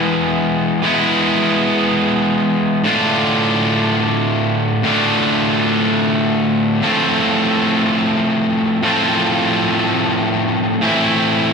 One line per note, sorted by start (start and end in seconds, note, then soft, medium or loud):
0.00 0.82 E3 medium
0.00 0.82 G#3 medium
0.00 0.83 B3 medium
0.00 0.83 E4 medium
0.83 2.82 E3 soft
0.83 2.83 G#3 medium
0.83 2.83 B3 medium
0.83 2.84 E4 medium
2.84 4.83 A2 medium
2.84 4.83 D3 medium
2.84 4.85 A3 medium
2.84 4.86 D4 medium
2.84 4.87 F4 medium
4.83 6.82 A2 medium
4.83 6.82 D3 medium
4.83 6.84 A3 medium
4.83 6.85 D4 medium
4.83 6.86 F4 medium
6.82 8.82 A2 medium
6.82 8.81 F3 medium
6.82 8.84 A3 medium
6.82 8.85 C4 medium
6.86 8.83 F4 medium
8.83 10.80 A2 medium
8.83 10.81 F3 medium
8.83 10.81 A3 medium
8.83 10.82 C4 medium
8.83 10.82 F4 medium
10.81 11.53 A2 medium
10.81 11.53 E3 medium
10.81 11.53 A3 medium
10.81 11.53 C4 medium
10.81 11.53 E4 medium